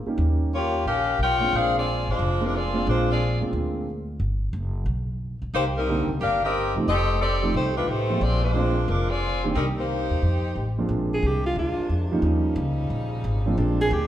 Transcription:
0.06 grand piano G3 A#3 C#4 D#4 G4, muted upright bass stroke
0.18 upright bass D#2
0.54 saxophone section A#3 F4 G4 C#5
0.86 upright bass A#1, saxophone section C#4 G4 A#4 F5
1.19 upright bass B1, saxophone section F4 A#4 C#5 G5
1.41 grand piano G#3 A#3 C4 D4 F4
1.53 upright bass A#1, saxophone section D4 G#4 C5 F5
1.77 saxophone section C4 F4 G#4 D5
2.07 upright bass G#1, saxophone section G#3 D4 F4 C5
2.19 upright bass F1
2.41 grand piano G#3 A#3 C4 D4 F4, saxophone section A#4
2.45 saxophone section G#3 D4 F4
2.55 saxophone section C4 F4 G#4 D5
2.74 grand piano G#3 A#3 C4 D4 F4
2.87 upright bass A#1, saxophone section G#3 D4 F4 C5
3.10 saxophone section C4 F4 G#4 D5
3.41 upright bass F2, grand piano G#3 A#3 C4 D4 F4
3.53 upright bass D2
4.20 upright bass G1
4.53 upright bass F#1
4.86 upright bass B1
5.42 upright bass B1
5.54 upright bass C2, saxophone section A#3 D#4 G4 C5
5.76 saxophone section G3 C4 D#4 A#4
5.88 grand piano D3 G3 A#3 C4 D#4
6.08 upright bass C#2
6.21 upright bass G1, saxophone section D4 G4 A#4 F5
6.44 saxophone section C4 G4 A#4 D#5
6.76 upright bass C2, grand piano F3 G3 A3 C4 D#4
6.88 upright bass F1, saxophone section C4 G4 A4 D#5
7.21 saxophone section C4 G4 A4 D5
7.42 grand piano F3 G3 A3 C4 D#4
7.54 upright bass C2, saxophone section A3 D#4 G4 C5
7.76 saxophone section G#3 D4 F4 B4
7.88 upright bass A1, saxophone section A3 D#4 G4 C5
8.10 grand piano F3 G#3 A#3 C4 F4
8.21 upright bass A#1, saxophone section C4 F4 G#4 D5
8.43 saxophone section G#3 D4 F4 C5
8.54 grand piano F3 G#3 A#3 C4 D4
8.88 upright bass F1, saxophone section G#3 D4 F4 A#4
9.10 saxophone section C4 F4 G#4 D5
9.44 grand piano D#3 G3 A#3 C4 D4
9.55 upright bass C2, saxophone section G3 C4 D#4 A#4
9.78 saxophone section A#3 D#4 G4 C5
10.10 upright bass D#2
10.22 upright bass F2
10.56 upright bass A1
10.78 grand piano F3 G#3 A#3 C4 D4
10.89 upright bass A#1, saxophone section C3 G#3 A#3 D4
11.14 alto saxophone G#4
11.23 upright bass C2
11.27 alto saxophone G4
11.46 alto saxophone F4
11.56 upright bass D2, alto saxophone F4
11.77 muted upright bass stroke
11.89 upright bass F2
12.12 grand piano F3 G3 A#3 C#4 D#4
12.22 upright bass D#2, saxophone section C#3 F3 G3 D#4
12.56 upright bass C#2
12.90 upright bass A#1
13.24 upright bass G#1
13.46 grand piano F3 G#3 A#3 C4 D4
13.57 upright bass A#1, saxophone section C3 G#3 A#3 D4
13.81 alto saxophone G#4
13.91 upright bass D2, alto saxophone G4

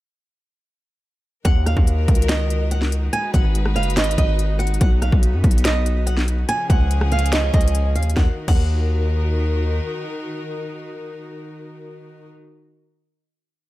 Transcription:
1.45 808-style bass D#2, string section D#3 D#4 F#4 A#4, nylon-string guitar F#5, kick, closed hi-hat
1.66 nylon-string guitar F5, cross-stick, closed hi-hat
1.77 808-style bass D#2, kick
1.87 closed hi-hat
2.08 808-style bass C#2, kick, closed hi-hat
2.15 closed hi-hat
2.22 closed hi-hat
2.29 nylon-string guitar D#5, snare, clap, closed hi-hat
2.50 closed hi-hat
2.71 nylon-string guitar F#5, closed hi-hat
2.82 snare
2.92 closed hi-hat
3.13 string section G#3 F#4 B4, nylon-string guitar G#5, closed hi-hat
3.34 808-style bass G#1, nylon-string guitar F#5, kick, closed hi-hat
3.55 closed hi-hat
3.66 cross-stick
3.76 808-style bass F#1, nylon-string guitar F5, closed hi-hat
3.83 closed hi-hat
3.90 closed hi-hat
3.97 808-style bass G#1, nylon-string guitar D#5, snare, clap, closed hi-hat
4.04 closed hi-hat
4.11 closed hi-hat
4.18 808-style bass G#1, nylon-string guitar D#5, kick, closed hi-hat
4.39 closed hi-hat
4.59 nylon-string guitar F#5, closed hi-hat
4.67 closed hi-hat
4.74 closed hi-hat
4.81 808-style bass B1, string section B3, nylon-string guitar F#5, kick, closed hi-hat
5.02 nylon-string guitar F5, cross-stick, closed hi-hat
5.12 808-style bass B1, kick
5.23 closed hi-hat
5.33 808-style bass F#2
5.44 808-style bass B1, kick, closed hi-hat
5.51 closed hi-hat
5.58 closed hi-hat
5.65 nylon-string guitar D#5, snare, clap, closed hi-hat
5.86 closed hi-hat
6.07 nylon-string guitar F#5, closed hi-hat
6.17 snare
6.28 closed hi-hat
6.49 string section C#3 F3 C#4 G#4, nylon-string guitar G#5, closed hi-hat
6.70 808-style bass C#2, nylon-string guitar F#5, kick, closed hi-hat
6.91 closed hi-hat
7.01 cross-stick
7.12 nylon-string guitar F5, closed hi-hat
7.19 closed hi-hat
7.26 closed hi-hat
7.33 nylon-string guitar D#5, snare, clap, closed hi-hat
7.54 808-style bass C#2, nylon-string guitar D#5, kick, closed hi-hat
7.61 closed hi-hat
7.68 closed hi-hat
7.75 closed hi-hat
7.95 808-style bass D#2, nylon-string guitar F5, closed hi-hat
8.03 closed hi-hat
8.10 closed hi-hat
8.17 808-style bass D#2, string section D#3 D#4 F#4 A#4, nylon-string guitar F#5, kick, snare
8.48 808-style bass D#2, nylon-string guitar F#5, kick, crash

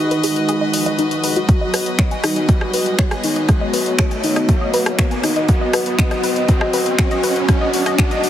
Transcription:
Already playing: analog synth pad G#3 D#4 G#4, string section G#3 F#4 B4 D#5, soft synth lead D#4, riser
0.11 synth arpeggio sound B4, closed hi-hat
0.24 synth arpeggio sound G#4, open hi-hat
0.36 closed hi-hat
0.49 synth arpeggio sound G#4, closed hi-hat
0.61 synth arpeggio sound D#5
0.74 synth arpeggio sound D#5, open hi-hat
0.86 synth arpeggio sound D#5, closed hi-hat
0.99 synth arpeggio sound D#4, closed hi-hat
1.11 closed hi-hat
1.24 synth arpeggio sound B4, open hi-hat
1.36 synth arpeggio sound F#4, closed hi-hat
1.48 analog synth pad B3 F#4 C#5, soft synth lead F#4, kick, closed hi-hat
1.61 synth arpeggio sound D#5
1.74 synth arpeggio sound B4, cross-stick, open hi-hat
1.86 closed hi-hat
1.99 synth arpeggio sound C#5, finger snap, kick, closed hi-hat
2.11 synth arpeggio sound G#5, closed hi-hat
2.24 soft synth lead D#4, cross-stick, open hi-hat
2.36 synth arpeggio sound D#5, closed hi-hat
2.49 soft synth lead F#4, kick, closed hi-hat
2.61 synth arpeggio sound D#5, cross-stick
2.74 synth arpeggio sound B4, open hi-hat
2.86 closed hi-hat
2.99 synth arpeggio sound C#5, finger snap, kick, closed hi-hat
3.11 synth arpeggio sound G#5, cross-stick, closed hi-hat
3.24 soft synth lead D#4, open hi-hat
3.36 synth arpeggio sound D#5, closed hi-hat
3.49 soft synth lead F#4, kick, cross-stick, closed hi-hat
3.61 synth arpeggio sound D#5
3.74 synth arpeggio sound B4, open hi-hat
3.86 closed hi-hat
3.99 synth arpeggio sound C#5, finger snap, kick, cross-stick, closed hi-hat
4.11 synth arpeggio sound G#5, closed hi-hat
4.24 soft synth lead D#4, open hi-hat
4.36 synth arpeggio sound D#5, cross-stick, closed hi-hat
4.49 soft synth lead F#4, kick, closed hi-hat
4.61 synth arpeggio sound D#5
4.74 synth arpeggio sound B4, open hi-hat
4.86 cross-stick, closed hi-hat
4.99 synth arpeggio sound C#5, finger snap, kick, closed hi-hat
5.11 synth arpeggio sound G#5, closed hi-hat
5.24 soft synth lead D#4, cross-stick, open hi-hat
5.36 synth arpeggio sound D#5, closed hi-hat
5.48 soft synth lead F#4, analog synth pad D#5, kick, closed hi-hat
5.61 synth arpeggio sound D#5
5.73 synth arpeggio sound B4, cross-stick, open hi-hat
5.86 closed hi-hat
5.99 soft synth lead F#4, finger snap, kick, closed hi-hat
6.11 synth arpeggio sound D#5, cross-stick, closed hi-hat
6.24 synth arpeggio sound B4, open hi-hat
6.36 closed hi-hat
6.48 soft synth lead F#4, kick, closed hi-hat
6.61 synth arpeggio sound D#5, cross-stick
6.73 synth arpeggio sound B4, open hi-hat
6.86 closed hi-hat
6.98 soft synth lead F#4, finger snap, kick, cross-stick, closed hi-hat
7.11 synth arpeggio sound D#5, closed hi-hat
7.23 synth arpeggio sound B4, open hi-hat
7.36 closed hi-hat
7.49 soft synth lead F#4, kick, cross-stick, closed hi-hat
7.61 synth arpeggio sound D#5
7.74 soft synth lead F#4, open hi-hat
7.86 synth arpeggio sound D#5, cross-stick, closed hi-hat
7.98 soft synth lead F#4, finger snap, kick, closed hi-hat
8.11 synth arpeggio sound D#5, closed hi-hat
8.24 soft synth lead F#4, open hi-hat

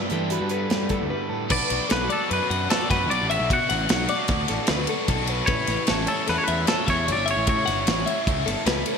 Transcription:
Already playing: clean electric guitar G2 G3 E4 B4, overdriven electric guitar D3 G3
0.02 clean electric guitar C5
0.09 overdriven electric guitar G2 D3 G3 B3 D4, picked electric bass E3, clean electric guitar G4 A4, closed hi-hat
0.30 clean electric guitar F#4 B4, closed hi-hat
0.41 picked electric bass G2
0.49 clean electric guitar B4, closed hi-hat
0.54 clean electric guitar A4
0.70 clean electric guitar G3, picked electric bass G3, snare, closed hi-hat
0.89 clean electric guitar E4 A4, kick, closed hi-hat
1.02 picked electric bass D2
1.10 clean electric guitar G2 B4
1.29 clean electric guitar A2 A4
1.48 picked electric bass B1, overdriven electric guitar B2 F#3 B3 D4 F#4, clean electric guitar B4 D5, kick, crash
1.70 picked electric bass B1, overdriven electric guitar B3 D4 F#4, ride
1.89 picked electric bass B1, overdriven electric guitar B2 F#3 B3 D4 F#4, clean electric guitar A4 B4, snare, ride
2.09 overdriven electric guitar B3 D4 F#4, clean electric guitar A4 D5, ride
2.30 picked electric bass F#2, clean electric guitar B4, ride
2.50 picked electric bass F#2, clean electric guitar F#5, ride
2.69 overdriven electric guitar F#3 B3 D4 F#4, clean electric guitar A4 D5, snare, ride
2.88 picked electric bass F#2, overdriven electric guitar B3 D4 F#4, clean electric guitar B4 F#5, kick, snare, ride
3.09 picked electric bass B1, overdriven electric guitar B2 F#3 B3 D4 F#4, clean electric guitar D5, ride
3.22 picked electric bass A1
3.29 overdriven electric guitar B3 D4 F#4, clean electric guitar E5, ride
3.40 picked electric bass B1
3.49 overdriven electric guitar B2 F#3 B3 D4 F#4, picked electric bass B2, kick, ride
3.53 clean electric guitar F#5
3.69 picked electric bass A1, overdriven electric guitar B3 D4 F#4, clean electric guitar F#5, snare, ride
3.88 picked electric bass B1, overdriven electric guitar B2 F#3 B3 D4 F#4, snare, ride
4.08 overdriven electric guitar B3 D4 F#4, clean electric guitar D5, ride
4.28 picked electric bass D2, kick, snare, ride
4.48 picked electric bass A1, clean electric guitar A4, snare, ride
4.66 picked electric bass D2, overdriven electric guitar F#3 B3 D4 F#4, clean electric guitar B4, snare, ride
4.87 overdriven electric guitar B3 D4 F#4, clean electric guitar A4, ride
5.07 picked electric bass B1, overdriven electric guitar B2 F#3 B3 D4 F#4, clean electric guitar A4, kick, snare, ride
5.27 overdriven electric guitar B3 D4 F#4, clean electric guitar B4, ride
5.46 picked electric bass A1, overdriven electric guitar A2 E3 G3 C#4, clean electric guitar B4 C#5, kick, ride
5.51 overdriven electric guitar E4
5.67 picked electric bass A1, overdriven electric guitar C#4 E4, snare, ride
5.71 overdriven electric guitar G3
5.87 picked electric bass A1, overdriven electric guitar A2 E3 G3 C#4 E4, clean electric guitar A4, snare, ride
6.07 overdriven electric guitar G3 C#4 E4, clean electric guitar A4 C#5, ride
6.27 picked electric bass E2, clean electric guitar A4 B4, snare, ride
6.38 clean electric guitar C#5
6.44 clean electric guitar B4, ride
6.48 picked electric bass E2, clean electric guitar E5
6.67 overdriven electric guitar E3 G3 C#4 E4, clean electric guitar A4 C#5, snare, ride
6.86 picked electric bass E2, overdriven electric guitar G3 C#4 E4, clean electric guitar C#5 E5, kick, snare, ride
7.05 picked electric bass A1, overdriven electric guitar A2 E3 G3 C#4 E4, clean electric guitar C#5, ride
7.12 clean electric guitar D5
7.17 picked electric bass G1
7.26 overdriven electric guitar G3 C#4 E4, clean electric guitar E5, ride
7.31 clean electric guitar C#5
7.37 picked electric bass A1
7.46 overdriven electric guitar A2 E3 G3 C#4 E4, picked electric bass A2, clean electric guitar C#5, kick, ride
7.66 picked electric bass G1, overdriven electric guitar G3 C#4 E4, clean electric guitar F#5, snare, ride
7.86 picked electric bass A1, overdriven electric guitar A2 E3 G3 C#4 E4, snare, ride
8.06 overdriven electric guitar G3 C#4 E4, clean electric guitar E5, ride
8.27 picked electric bass C#2, kick, ride
8.46 picked electric bass G1, clean electric guitar A4, snare, ride
8.65 picked electric bass C#2, overdriven electric guitar E3 G3 C#4 E4, clean electric guitar B4, snare, ride
8.86 overdriven electric guitar G3 C#4 E4, clean electric guitar A4, ride

